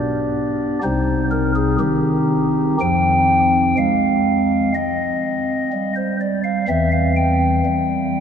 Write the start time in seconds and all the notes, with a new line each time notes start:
Already playing: B3 D4 G4 D5
0.83 C2 C3 C4 D#4 C5
1.31 A#4
1.55 G#4
1.79 D#3 G4
2.80 F2 F3 C4 G5
3.78 G#3 F5
4.75 C4 D#5
5.73 G3
5.96 C5
6.21 D5
6.44 F5
6.68 E2 E3 C4 E5
6.92 F5
7.16 G5
7.65 G3